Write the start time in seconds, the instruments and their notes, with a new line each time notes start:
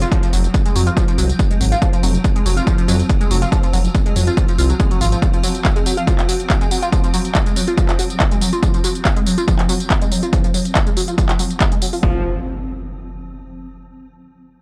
Already playing: synth drone F3 C4, downlifter
0.02 analog synth lead F4, closed hi-hat, tambourine
0.12 analog synth lead F3, kick, closed hi-hat, tambourine
0.23 analog synth lead F3, closed hi-hat, tambourine
0.33 detuned saw bass F1, analog synth lead F#3, open hi-hat, tambourine
0.44 closed hi-hat, tambourine
0.54 kick, closed hi-hat, tambourine
0.65 analog synth lead G#3, closed hi-hat, tambourine
0.75 detuned saw bass F2, analog synth lead F#3, open hi-hat, tambourine
0.87 analog synth lead F4, closed hi-hat, tambourine
0.97 analog synth lead F3, kick, closed hi-hat, tambourine
1.08 analog synth lead F3, closed hi-hat, tambourine
1.18 detuned saw bass C2, analog synth lead F#3, open hi-hat, tambourine
1.29 closed hi-hat, tambourine
1.39 kick, closed hi-hat, tambourine
1.50 analog synth lead G#3, closed hi-hat, tambourine
1.60 detuned saw bass G#1, analog synth lead F#3, open hi-hat, tambourine
1.72 analog synth lead F4, closed hi-hat, tambourine
1.82 analog synth lead F3, kick, closed hi-hat, tambourine
1.93 analog synth lead F3, closed hi-hat, tambourine
2.03 detuned saw bass F1, analog synth lead F#3, open hi-hat, tambourine
2.14 closed hi-hat, tambourine
2.24 kick, closed hi-hat, tambourine
2.36 analog synth lead G#3, closed hi-hat, tambourine
2.46 detuned saw bass F1, analog synth lead F#3, open hi-hat, tambourine
2.57 analog synth lead F4, closed hi-hat, tambourine
2.67 analog synth lead F3, kick, closed hi-hat, tambourine
2.78 analog synth lead F3, closed hi-hat, tambourine
2.88 detuned saw bass F2, analog synth lead F#3, open hi-hat, tambourine
3.00 closed hi-hat, tambourine
3.09 kick, closed hi-hat, tambourine
3.21 analog synth lead G#3, closed hi-hat, tambourine
3.31 detuned saw bass F1, analog synth lead F#3, open hi-hat, tambourine
3.42 analog synth lead F4, closed hi-hat, tambourine
3.52 analog synth lead F3, kick, closed hi-hat, tambourine
3.63 analog synth lead F3, closed hi-hat, tambourine
3.73 detuned saw bass F1, analog synth lead F#3, open hi-hat, tambourine
3.85 closed hi-hat, tambourine
3.95 kick, closed hi-hat, tambourine
4.06 analog synth lead G#3, closed hi-hat, tambourine
4.16 detuned saw bass F2, analog synth lead F#3, open hi-hat, tambourine
4.27 analog synth lead F4, closed hi-hat, tambourine
4.37 analog synth lead F3, kick, closed hi-hat, tambourine
4.48 analog synth lead F3, closed hi-hat, tambourine
4.58 detuned saw bass C2, analog synth lead F4, open hi-hat, tambourine
4.70 analog synth lead F#3, closed hi-hat, tambourine
4.80 analog synth lead G#3, kick, closed hi-hat, tambourine
4.91 analog synth lead F#3, closed hi-hat, tambourine
5.01 detuned saw bass G#1, analog synth lead F4, open hi-hat, tambourine
5.12 analog synth lead F3, closed hi-hat, tambourine
5.22 analog synth lead F3, kick, closed hi-hat, tambourine
5.33 analog synth lead F3, closed hi-hat, tambourine
5.43 analog synth lead F#3, open hi-hat, tambourine
5.55 closed hi-hat, tambourine
5.65 kick, clap, closed hi-hat, tambourine
5.76 analog synth lead G#3, closed hi-hat, tambourine
5.86 analog synth lead F#3, open hi-hat, tambourine
5.97 analog synth lead F4, closed hi-hat, tambourine
6.07 analog synth lead F3, kick, closed hi-hat, tambourine
6.19 analog synth lead F3, clap, closed hi-hat, tambourine
6.29 analog synth lead F#3, open hi-hat, tambourine
6.40 closed hi-hat, tambourine
6.50 kick, clap, closed hi-hat, tambourine
6.61 analog synth lead G#3, closed hi-hat, tambourine
6.71 analog synth lead F#3, open hi-hat, tambourine
6.82 analog synth lead F4, closed hi-hat, tambourine
6.92 analog synth lead F3, kick, closed hi-hat, tambourine
7.04 analog synth lead F3, closed hi-hat, tambourine
7.14 analog synth lead F#3, open hi-hat, tambourine
7.25 closed hi-hat, tambourine
7.35 kick, clap, closed hi-hat, tambourine
7.46 analog synth lead G#3, closed hi-hat, tambourine
7.56 analog synth lead F#3, open hi-hat, tambourine
7.67 analog synth lead F4, closed hi-hat, tambourine
7.78 analog synth lead F3, kick, closed hi-hat, tambourine
7.89 analog synth lead F3, clap, closed hi-hat, tambourine
7.99 analog synth lead F#3, open hi-hat, tambourine
8.10 closed hi-hat, tambourine
8.20 kick, clap, closed hi-hat, tambourine
8.31 analog synth lead G#3, closed hi-hat, tambourine
8.41 analog synth lead F#3, open hi-hat, tambourine
8.53 analog synth lead F4, closed hi-hat, tambourine
8.63 analog synth lead F3, kick, closed hi-hat, tambourine
8.74 analog synth lead F3, closed hi-hat, tambourine
8.84 analog synth lead F#3, open hi-hat, tambourine
8.95 closed hi-hat, tambourine
9.05 kick, clap, closed hi-hat, tambourine
9.16 analog synth lead G#3, closed hi-hat, tambourine
9.26 analog synth lead F#3, open hi-hat, tambourine
9.38 analog synth lead F4, closed hi-hat, tambourine
9.48 analog synth lead F3, kick, closed hi-hat, tambourine
9.59 analog synth lead F3, clap, closed hi-hat, tambourine
9.69 analog synth lead F#3, open hi-hat, tambourine
9.80 closed hi-hat, tambourine
9.90 kick, clap, closed hi-hat, tambourine
10.02 analog synth lead G#3, closed hi-hat, tambourine
10.11 analog synth lead F#3, open hi-hat, tambourine
10.23 analog synth lead F4, closed hi-hat, tambourine
10.33 analog synth lead F3, kick, closed hi-hat, tambourine
10.44 analog synth lead F3, closed hi-hat, tambourine
10.54 analog synth lead F#3, open hi-hat, tambourine
10.65 closed hi-hat, tambourine
10.75 kick, clap, closed hi-hat, tambourine
10.86 analog synth lead G#3, closed hi-hat, tambourine
10.97 analog synth lead F#3, open hi-hat, tambourine
11.08 analog synth lead F4, closed hi-hat, tambourine
11.18 analog synth lead F3, kick, closed hi-hat, tambourine
11.29 analog synth lead F3, clap, closed hi-hat, tambourine
11.39 analog synth lead F#3, open hi-hat, tambourine
11.50 closed hi-hat, tambourine
11.60 kick, clap, closed hi-hat, tambourine
11.72 analog synth lead G#3, closed hi-hat, tambourine
11.82 analog synth lead F#3, open hi-hat, tambourine
11.93 analog synth lead F4, open hi-hat, tambourine
12.03 detuned saw bass F1, analog synth lead F3, kick, impact